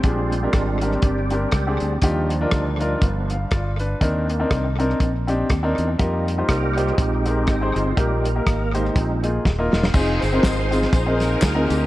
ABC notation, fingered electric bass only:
X:1
M:4/4
L:1/8
Q:"Swing" 1/4=121
K:Bbmix
V:1 name="Fingered electric bass" clef=bass
B,,,2 A,,,2 G,,,2 _D,, =D,, | E,,2 D,,2 G,,,2 G,,,2 | E,,2 C,,2 B,,,2 E,, _F,, | F,,2 C,,2 B,,,2 A,,, G,,, |
B,,,2 A,,,2 B,,,2 E,,, _F,,, | F,,, G,,, A,,,2 B,,,2 D,, D,, |]